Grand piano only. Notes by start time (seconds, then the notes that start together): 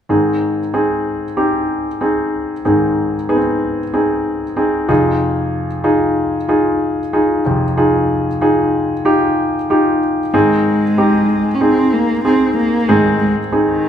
0.09 G#2 D#3 C4 D#4 G#4
0.73 C4 D#4 G#4
1.37 C4 D#4 G4
2.01 C4 D#4 G#4
2.65 G#2 D#3 C4 D#4 G#4
3.29 B3 D#4 G#4
3.35 C4
3.93 C4 D#4 G#4
4.57 C4 D#4 G#4
4.88 F2 C3 D#4 F4 G#4
5.84 D#4 F4 G#4
6.48 D#4 F4 G#4
7.13 D#4 F4 G#4
7.46 F2 C3
7.77 D#4 F4 G#4
8.41 D#4 F4 G#4
9.05 D#4 F4 G4
9.70 D#4 F4 G4
10.34 G#2 D#3 C4 D#4 G#4
10.98 C4 D#4 G4
11.60 C4 D#4 G#4
12.25 C4 D#4 G#4
12.88 G#2 D#3 C4 D#4 G#4
13.52 C4 D#4 G#4